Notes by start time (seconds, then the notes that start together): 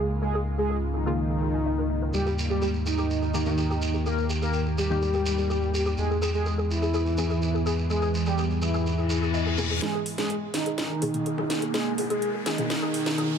Already playing: C#2 G#2 C#3 G#3 A#3 F4 G#4
0.22 G#3 G#4
0.34 G#4
0.58 G#3 G#4
0.70 G#4
0.94 D#3 D#4 G#4
1.06 C#3 A#3 F4 G#4
1.30 G#4
1.42 G#4
1.54 G#5
1.66 D#5
1.78 A#4
1.90 D#5
2.02 A#4
2.14 D#2 D#3 G3 G4, shekere
2.26 G4, shekere
2.39 shekere
2.50 G3 G4, shekere
2.62 G4, shekere
2.74 shekere
2.86 D#3 D#4 G4, shekere
2.98 G4, shekere
3.10 shekere
3.22 G4, shekere
3.34 D#3 A#3 G4, shekere
3.46 D#3 A#3 G4, shekere
3.57 G4, shekere
3.70 G4, shekere
3.82 shekere
3.94 G4, shekere
4.06 A#3 G4 A#4, shekere
4.18 shekere
4.30 G4, shekere
4.42 A#3 G4 A#4, shekere
4.53 shekere
4.65 G4, shekere
4.78 G3 G4, shekere
4.90 D#3 A#3 G4, shekere
5.02 G4, shekere
5.13 G4, shekere
5.26 shekere
5.38 G4, shekere
5.50 G4, shekere
5.62 shekere
5.74 G4, shekere
5.86 G4, shekere
5.98 E2 E3 G#3 B3 G#4, shekere
6.10 G#4, shekere
6.22 G#4, shekere
6.34 G#3 G#4, shekere
6.46 G#4, shekere
6.58 G#4, shekere
6.70 E3 E4, shekere
6.82 G#4, shekere
6.94 G#4, shekere
7.06 shekere
7.17 E3 B3 G#4, shekere
7.30 G#4, shekere
7.42 shekere
7.54 G#4, shekere
7.66 G#4, shekere
7.78 shekere
7.90 G#3 G#4, shekere
8.02 G#4, shekere
8.14 shekere
8.26 G3 G4 G#4, shekere
8.38 G#4, shekere
8.51 shekere
8.62 E3 E4 G#4, shekere
8.74 G#4, shekere
8.86 reverse cymbal, shekere
8.98 G#4, shekere
9.10 G#4, shekere
9.22 G#4, shekere
9.34 D#5, shekere
9.46 G#4, shekere
9.58 B2 A#3 G#4, shekere
9.70 G#4, shekere
9.82 B2 G#3 A#3 G#4, snare, closed hi-hat, riser
9.94 G#4
10.06 open hi-hat
10.18 G#3 G#4, snare, closed hi-hat, mid tom
10.30 G#4, closed hi-hat
10.54 D#3 D#4 G#4, snare, open hi-hat
10.66 G#4, closed hi-hat
10.78 snare, closed hi-hat, mid tom
10.90 G#4
11.02 B2 A#3 G#4, open hi-hat
11.14 B2 A#3 G#4, closed hi-hat
11.26 G#4, closed hi-hat
11.38 G#4, mid tom
11.50 snare, open hi-hat
11.62 G#4, closed hi-hat
11.74 G#3 G#4, snare, closed hi-hat
11.98 G#4, mid tom, open hi-hat
12.10 G#3 G#4, closed hi-hat
12.22 closed hi-hat
12.34 G#4
12.46 D#3 D#4 G#4, snare, open hi-hat
12.58 B2 A#3 G#4, closed hi-hat, mid tom
12.70 G#4, snare, closed hi-hat
12.82 G#4
12.94 open hi-hat
13.06 G#4, snare, closed hi-hat
13.18 G#4, closed hi-hat, mid tom